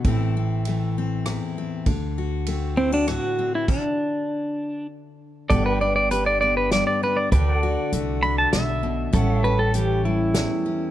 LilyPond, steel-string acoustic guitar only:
\new Staff \with { instrumentName = "Steel-string acoustic guitar" } { \time 3/4 \key g \major \tempo 4 = 99 << { <e a c' e'>8 c'8 a8 c'8 e'8 c'8 | r8 fis'8 c'8 e'16 fis'16 c'8 c'8 | r2. | <b d' g'>8 d'8 g'8 b4 d'8 |
<d' fis'>8 fis'8 fis'8 d'4. | <g cis' g'>8 cis'8 cis'8 g4 cis'8 | } \\ { a,4 e4 e,4 | d4 a4 a,4 | r2. | g,4 d4 g,4 |
d4 a4. b,8 | a,4 e4 e,4 | } >> }